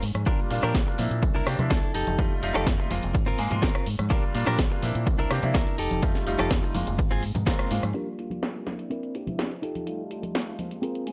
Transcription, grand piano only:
0.26 G3 A#3 D4 F4
0.50 G3 A#3 D4 F4
0.87 G3 A#3 D4 F4
0.98 A#3 C4 D4 E4
1.46 A#3 C4 D4 G4
1.59 A#3 C4 D4 E4
2.18 G3 A3 D#4 F4
2.42 G3 A3 D#4 F4
2.79 G3 A3 D#4 F4
2.90 G#3 A#3 C4 F4
3.38 G#3 A#3 C4 G#4
3.51 G#3 A#3 C4 F4
4.10 G3 A#3 D4 F4
4.34 G3 A#3 D4 F4
4.71 G3 A#3 D4 F4
4.83 A#3 C4 D4 E4
5.31 A#3 C4 D4 G4
5.43 A#3 C4 D4 E4
6.02 G3 A3 D#4 F4
6.26 G3 A3 D#4 F4
6.63 G3 A3 D#4 F4
6.74 G#3 A#3 C4 F4
7.46 G#3 A#3 C4 F4
7.70 G#3 A#3 C4 F4
7.95 G3 A#3 D4 F4
8.19 G3 A#3 D4 F4
8.55 G3 A#3 D4 F4
8.66 A#3 C4 D4 E4
9.14 A#3 C4 D4 G4
9.27 A#3 C4 D4 E4
9.86 G3 A3 D#4 F4
10.10 G3 A3 D#4 F4
10.47 G3 A3 D#4 F4
10.58 G#3 A#3 C4 F4
11.06 G#3 A#3 C4 G#4

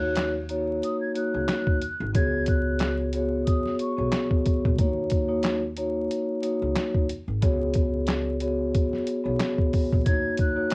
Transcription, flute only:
Already playing: F#6
0.85 D#6
1.01 G#6
1.16 F#6
2.16 G#6
2.48 F#6
3.46 D#6
3.81 C#6
10.06 G#6
10.41 F#6

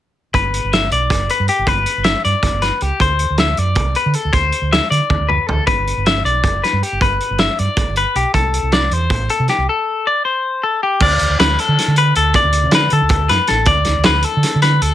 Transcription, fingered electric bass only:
0.34 G1
0.64 G1
0.92 B1
1.11 F#1
1.40 G2
1.59 G1
1.67 G1
1.97 G1
2.25 G2
2.43 G1
2.52 G1
2.82 C#2
3.01 D2
3.30 D2
3.58 F#2
3.77 C2
4.06 D3
4.25 D2
4.33 D2
4.62 D2
4.91 D3
5.10 D2
5.20 D2
5.49 D2
5.68 G1
5.97 G1
6.25 B1
6.44 F#1
6.73 G2
6.92 G1
7.02 G1
7.30 G1
7.59 G2
7.77 G1
7.88 G1
8.15 B1
8.34 C2
8.62 C2
8.90 E2
9.10 A1
9.39 C3
9.58 C2
11.01 D2
11.21 D2
11.29 D2
11.39 D2
11.68 D3
11.88 D3
12.16 D2
12.44 D2
12.64 D3
12.92 D3
13.02 D2
13.31 F#2
13.50 A1
13.66 D2
13.88 D2
13.98 D2
14.07 D2
14.37 D3
14.55 D3
14.81 D2

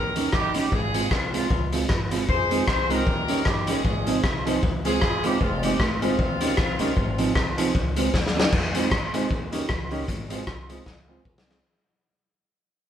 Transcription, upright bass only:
Already playing: D#2
0.33 G1
0.72 G#1
1.11 C2
1.50 C#2
1.90 G1
2.28 F2
2.67 C2
3.07 D#2
3.46 G1
3.85 G#1
4.24 C2
4.63 C#2
5.02 G1
5.41 F1
5.79 G#1
6.19 D#2
6.58 C2
6.79 C#2
6.97 G#1
7.35 C2
7.75 C#2
8.14 D#2
8.53 F2
8.92 G2
9.31 D#2
9.70 C#2
10.08 G#1
10.47 C2
10.86 C#2
11.25 C2

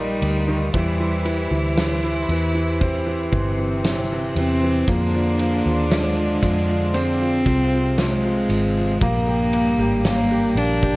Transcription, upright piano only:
Already playing: A#2 D#3 G3 A#3 D#4
0.48 D#3
0.74 E3
1.00 E3
1.25 E3
1.51 E3
1.78 E3
2.03 E3
2.31 E3
2.54 E3
2.80 C4
3.06 E3
3.32 E3
3.58 E3
3.85 E3
4.12 E3
4.38 E3
4.63 E3
4.88 F3
5.15 F3
5.41 F3
5.67 F3
5.92 F3
6.17 F3
6.43 F3
6.69 F3
6.94 C4
7.21 F3
7.46 F3
7.73 F3
7.98 F3
8.25 F3
8.49 F3
8.77 F3
9.02 A#3
9.27 G4
9.54 A#3
9.79 G4
10.06 A#3
10.31 G4
10.57 A#3
10.83 G4

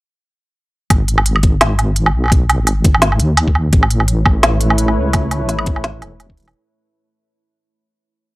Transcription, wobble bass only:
0.91 G#1
2.14 B1
2.59 G#1
3.20 D#2
3.73 A1
4.97 C#2
5.42 A1
6.02 E1

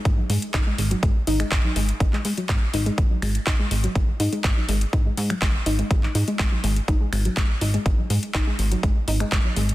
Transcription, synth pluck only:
0.05 G#3
0.18 F#3
0.30 G#3
0.54 D#4
0.67 G#3
0.78 G#3
0.91 F#3
1.03 G#3
1.27 D#4
1.40 G#3
1.52 G#3
1.64 F#3
1.76 G#3
2.00 D#4
2.13 G#3
2.25 G#3
2.37 F#3
2.49 G#3
2.74 D#4
2.86 G#3
3.11 F#3
3.22 G#3
3.47 D#4
3.59 G#3
3.71 G#3
3.84 F#3
3.95 G#3
4.20 D#4
4.33 G#3
4.44 G#3
4.57 F#3
4.69 G#3
4.93 D#4
5.06 G#3
5.17 G#3
5.30 F#3
5.42 G#3
5.66 D#4
5.79 G#3
5.91 G#3
6.15 D#4
6.28 G#3
6.39 G#3
6.52 F#3
6.64 G#3
6.88 D#4
7.01 G#3
7.13 G#3
7.25 F#3
7.37 G#3
7.61 D#4
7.74 G#3
7.86 G#3
7.98 F#3
8.10 G#3
8.34 D#4
8.47 G#3
8.59 G#3
8.72 F#3
8.83 G#3
9.08 D#4
9.20 G#3
9.32 G#3
9.45 F#3
9.56 G#3

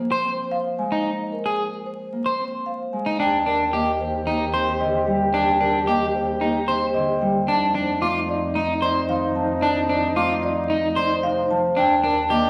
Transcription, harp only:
Already playing: F3 G#3
0.00 A#3
0.25 C4
0.79 G#3
2.13 A#3
2.39 C4
2.93 G#3
3.73 A#3
4.27 A#3
4.54 C4
4.80 D3
5.07 G3
5.87 A#3
6.41 A#3
6.68 C4
6.95 D3
7.21 G3
8.02 A3
8.55 A3
8.83 C4
9.09 D#3
9.36 F3
10.17 A3
10.70 A3
10.97 C4
11.24 C3
11.51 F3
12.31 A#3

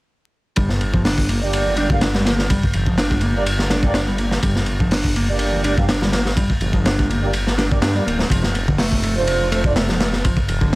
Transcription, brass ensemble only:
1.42 A#3 D4 G4 D5
1.78 A#3 D4 G4 D5
1.90 A#3 D4 G4 F5
3.35 A#3 D4 G4 D5
3.84 A#3 D4 G4 D5
5.29 A#3 D4 G4 D5
5.65 A#3 D4 G4 D5
5.78 A#3 D4 G4 F5
7.22 A#3 D4 G4 D5
7.71 A#3 D4 G4 D5
7.95 A#3 D4 G4 D5
9.16 A3 D4 F4 C5
9.51 A3 D4 F4 C5
9.65 A3 D4 F4 D5

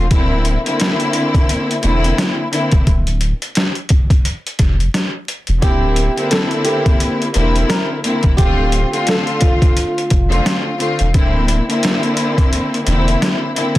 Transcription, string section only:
0.10 D3 A#3 C4 E4
0.65 D3 A#3 C4 E4
1.81 D3 A#3 C4 E4
2.51 D3 A#3 C4 E4
5.62 D3 A#3 C4 E4
6.16 D3 A#3 C4 E4
7.33 D3 A#3 C4 E4
8.03 D3 A#3 C4 E4
8.38 D3 A3 C4 F4
8.92 D3 A3 C4 F4
10.29 D3 A3 C4 F4
10.78 D3 A3 C4 F4
11.14 D3 A#3 C4 E4
11.68 D3 A#3 C4 E4
12.85 D3 A#3 C4 E4
13.55 D3 A#3 C4 E4

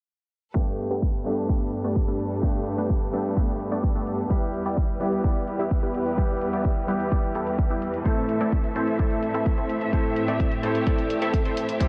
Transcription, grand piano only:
0.54 G2 A3 B3 D4 G4
1.25 G2 A3 B3 D4 G4
2.42 G2 A3 B3 D4 G4
3.12 G2 A3 B3 D4 G4
4.29 G3 B3 E4 G4
5.00 G3 B3 E4 G4
6.17 G3 B3 E4 G4
6.87 G3 B3 E4 G4
8.04 A2 A3 C4 E4 A4
8.75 A2 A3 C4 E4 A4
9.92 A2 A3 C4 E4 A4
10.62 A2 A3 C4 E4 A4
11.79 C3 G3 C4 E4 G4

